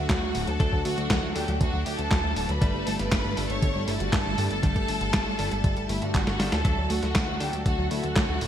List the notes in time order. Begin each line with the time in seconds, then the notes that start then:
Already playing: F#3 A3 D4 F#4 A4 F#5
0.09 D2 F#3, kick, snare, clap, closed hi-hat
0.22 D2 A3
0.35 D1 D3, open hi-hat
0.47 D2 F#3 A4 A5, closed hi-hat
0.60 D2 D3 F#3 A3 D4 A4, kick, closed hi-hat
0.72 D2 F#3, kick
0.85 D2 A3 F#4 F#5, open hi-hat
0.98 D2 D3, closed hi-hat
1.10 D2 F#3, kick, snare, clap, closed hi-hat
1.23 D2 A3
1.35 D2 D3 F#3 A3 D4 G4 A4 G5, open hi-hat
1.48 D2 F#3, closed hi-hat
1.61 D2 D3 F#4 F#5, kick, closed hi-hat
1.73 D2 F#3
1.86 D2 A3 G4 G5, open hi-hat
1.99 D2 D3 A4 A5, closed hi-hat
2.11 D2 F#3, kick, snare, clap, closed hi-hat
2.24 D2 A3
2.36 D1 D3, open hi-hat
2.49 D2 F#3 B4 B5, closed hi-hat
2.61 G1 D3 G3 A3 D4 A4 A5, kick, closed hi-hat
2.74 G1 G3
2.87 G1 A3 A4 A5, open hi-hat
2.99 G1 D3 B4 B5, snare, closed hi-hat
3.12 G1 G3, kick, snare, clap, closed hi-hat
3.25 G1 A3
3.37 G1 D3 G3 A3 D4 A4, open hi-hat
3.50 G1 G3 C#5 C#6, closed hi-hat
3.62 G1 D3, kick, closed hi-hat
3.75 G1 G3
3.88 G1 A3 E4 E5, open hi-hat
4.00 G1 D3 F#4 F#5, closed hi-hat
4.13 G1 G3 A4 A5, kick, snare, clap, closed hi-hat
4.26 G1 A3
4.38 G2 D3, open hi-hat
4.51 G1 G3 A4 A5, closed hi-hat
4.63 G1 D3 G3 A3 D4 A4 A5, kick, closed hi-hat
4.76 G1 G3, kick, closed hi-hat
4.88 G1 A3, open hi-hat
5.01 G1 D3, closed hi-hat
5.14 G1 G3, kick, snare, clap, closed hi-hat
5.26 G1 A3
5.38 G1 D3 G3 A3 D4 A4, open hi-hat
5.51 G1 G3, closed hi-hat
5.64 G1 D3, kick, closed hi-hat
5.77 G1 G3, closed hi-hat
5.89 G1 A3 E4 E5, open hi-hat
6.02 G2 D3 F#4 F#5, closed hi-hat
6.14 G1 G3, kick, snare, clap, closed hi-hat
6.27 G1 A3, snare, closed hi-hat
6.39 G1 D3 G3 A3 D4 A4, snare, open hi-hat
6.52 D2 G3 A4 A5, snare, closed hi-hat
6.64 D2 D3 F#3 A3 D4 F#4 A4, kick, closed hi-hat
6.77 D2 F#3
6.90 D2 A3 F#4 F#5, open hi-hat
7.03 D2 D3, snare, closed hi-hat
7.15 D2 F#3, kick, snare, clap, closed hi-hat
7.28 D2 A3
7.40 D2 D3 F#3 A3 D4 G4 A4 G5, open hi-hat
7.53 D2 F#3, closed hi-hat
7.66 D2 D3 F#4 F#5, kick, closed hi-hat
7.78 D2 F#3
7.91 D2 A3 E4 E5, open hi-hat
8.03 D2 D3 F#4 F#5, closed hi-hat
8.16 D2 F#3, kick, snare, clap, closed hi-hat
8.29 D2 A3
8.41 D1 D3, open hi-hat